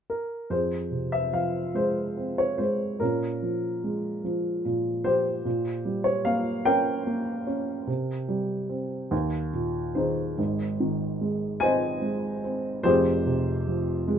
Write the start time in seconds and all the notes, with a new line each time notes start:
0.10 A#4
0.50 F2 G#4 C5
0.91 C3
1.12 E5
1.33 F3 F5
1.74 G#3 C5
2.17 C4
2.38 C#5
2.58 G#3 C5
3.00 A#2 C#4 A#4
3.42 F3
3.84 G#3
4.24 F3
4.65 A#2
5.04 F3 G4 C5
5.45 A#2
5.85 G3
6.04 C#5
6.25 A#3 F5
6.65 C#4 A#4 G5
7.07 A#3
7.47 C#4
7.87 C3
8.29 G3
8.69 C4
9.11 D#2
9.53 A#2
9.95 D#3 D#4 G#4 C5
10.38 G#1 G#2
10.80 D#3
11.21 G#3
11.60 C4 C5 D#5 G#5
12.02 G#3
12.44 C4
12.83 F1 F2 G4 G#4 C5
13.26 C3
13.68 F3
14.08 G#3